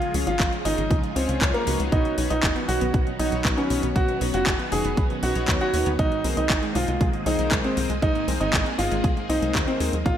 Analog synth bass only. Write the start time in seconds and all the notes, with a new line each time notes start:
0.14 C#2
0.27 G#1
0.40 G#1
0.65 G#1
0.78 G#1
0.91 C#2
1.16 C#2
1.29 C#2
1.41 C#2
1.67 C#2
1.80 C#2
1.92 B1
2.18 B1
2.30 B1
2.43 F#1
2.69 B1
2.81 B1
2.94 B1
3.19 B1
3.32 B1
3.45 B1
3.70 B1
3.83 B1
3.96 B1
4.21 B1
4.34 F#1
4.46 F#1
4.72 F#1
4.85 F#1
4.97 B1
5.23 B1
5.36 B1
5.48 D#2
5.74 D#2
5.86 D#2
5.99 C2
6.24 C2
6.37 C2
6.50 G#1
6.75 C2
6.88 C2
7.01 C2
7.26 C2
7.39 C2
7.52 C2
7.77 C2
7.90 C2
8.02 C2
8.28 C2
8.41 G#1
8.53 G#1
8.79 G#1
8.91 G#1
9.04 C2
9.29 C2
9.42 C2
9.55 D#2
9.80 D#2
9.93 D#2
10.06 A#1